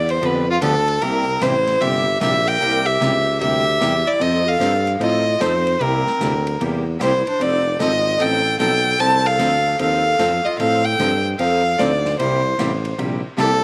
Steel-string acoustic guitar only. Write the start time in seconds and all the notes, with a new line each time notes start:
0.21 D3 F3 B3 D4 G4
0.62 D3 F3 B3 D4 G4
1.01 C3 G3 A#3 E4 G4
1.40 C3 G3 A#3 E4 G4
1.81 C3 G3 A#3 E4 G4
2.21 C3 G3 A#3 E4 G4
2.60 C3 G3 A#3 E4 G4
3.00 C3 G3 A#3 E4 G4
3.41 C3 G3 A#3 E4 G4
3.80 C3 G3 A#3 E4 G4
4.19 F3 C4 D#4 A4
4.59 F3 C4 D#4 A4
4.99 F3 C4 D#4 A4
5.39 F3 C4 D#4 A4
5.80 C3 G3 A#3 E4 G4
6.21 C3 G3 A#3 E4 G4
6.60 C3 G3 A#3 E4 G4
6.99 C3 G3 A#3 E4 G4
7.39 F3 C4 D#4 A4
7.79 F3 C4 D#4 A4
8.18 F3 C4 D#4 A4
8.59 F3 C4 D#4 A4
8.99 F3 C4 D#4 A4
9.38 F3 C4 D#4 A4
9.79 F3 C4 D#4 A4
10.19 F3 C4 D#4 A4
10.59 F3 C4 D#4 A4
11.00 F3 C4 D#4 A4
11.39 F3 C4 D#4 A4
11.79 F3 C4 D#4 A4
12.19 C3 G3 A#3 E4 G4
12.59 C3 G3 A#3 E4 G4
12.98 C3 G3 A#3 E4 G4
13.37 C3 G3 A#3 E4 G4